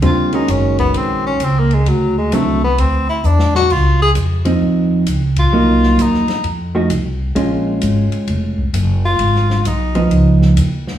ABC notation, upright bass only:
X:1
M:4/4
L:1/8
Q:"Swing" 1/4=131
K:Bbm
V:1 name="Upright bass" clef=bass
E,,2 G,,,2 B,,,2 D,,2 | =D,,2 C,,2 D,,2 =E,,2 | D,,2 F,,2 E,,2 D,,2 | C,,2 E,, z F,,2 C,,2 |
B,,,2 A,,, z F,,,2 G,,,2 | A,,,2 _C,,2 D,,2 E,,2 |]